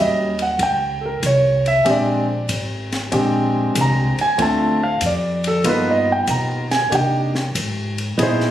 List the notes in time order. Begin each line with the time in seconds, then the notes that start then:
Already playing: D#2 F#3 G3 A#3 C#4
0.01 D#5
0.39 F#5, ride
0.59 C#2, kick, ride
0.63 G5
1.01 A4
1.06 A#4
1.23 C2 C#5, kick, hi-hat pedal, ride
1.66 E5, ride
1.85 A#1 G#3 C4 D4 G4, kick, ride
1.90 D5
2.49 G#1, kick, hi-hat pedal, ride
2.92 snare, ride
3.12 A#1 G#3 C4 D4 G4, kick, ride
3.75 C2, kick, hi-hat pedal, ride
3.81 A#5
4.18 G#5, muted upright bass stroke, ride
4.38 D2 A3 C4 D4 F4, kick, ride
4.42 A5
4.83 F5
5.01 F2, kick, hi-hat pedal, ride
5.06 D5
5.44 A4, ride
5.64 G2 A#3 B3 D#4 F4, kick, ride
5.69 B4
5.91 D#5
6.12 G5
6.27 B2 A#5, kick, hi-hat pedal, ride
6.71 G#5, snare, ride
6.90 C3 A#3 D4 D#4 G4, kick, ride
6.95 G5
7.35 snare
7.55 G#2, kick, hi-hat pedal, ride
7.98 ride
8.18 A#2 B3 D#4 E4 G#4, kick, ride
8.23 C5
8.40 snare